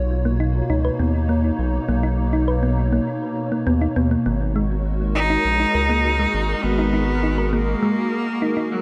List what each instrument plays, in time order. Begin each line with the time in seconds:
Already playing: analog synth bass B1, analog synth pad B2 A#3 D#4 F4 C#5
0.25 synth arpeggio sound A#3
0.40 synth arpeggio sound D#4
0.70 analog synth bass C#2, synth arpeggio sound D#4
0.85 synth arpeggio sound B4
0.99 analog synth bass D#2, synth arpeggio sound B3
1.29 synth arpeggio sound A#3
1.59 analog synth bass B1
1.88 analog synth bass B1, synth arpeggio sound A#3
2.03 synth arpeggio sound D#4
2.33 synth arpeggio sound D#4
2.48 synth arpeggio sound B4
2.63 synth arpeggio sound B3
2.93 synth arpeggio sound A#3
3.52 synth arpeggio sound A#3
3.67 analog synth bass D#2, synth arpeggio sound B3
3.82 synth arpeggio sound D#4
3.96 analog synth bass D#2, synth arpeggio sound B3
4.11 synth arpeggio sound A#3
4.26 analog synth bass G#1, analog synth pad G#3, synth arpeggio sound A#3
4.36 analog synth pad F#4
4.56 synth arpeggio sound G#3
4.68 analog synth pad A#4
5.15 synth arpeggio sound D#4, cello D#4
5.29 synth arpeggio sound D#4, analog synth pad G#4
5.45 analog synth bass A#1
5.60 synth arpeggio sound D#4
5.75 analog synth bass C#2, synth arpeggio sound A#4
5.89 synth arpeggio sound A#3
6.19 synth arpeggio sound G#3
6.34 analog synth bass G#1
6.64 analog synth bass G#1, cello B3
6.79 synth arpeggio sound D#4
6.94 synth arpeggio sound D#4
7.23 synth arpeggio sound D#4
7.38 synth arpeggio sound A#4
7.53 cello A#3, synth arpeggio sound A#3
7.83 synth arpeggio sound G#3
8.42 synth arpeggio sound D#4
8.57 synth arpeggio sound D#4
8.72 cello F#3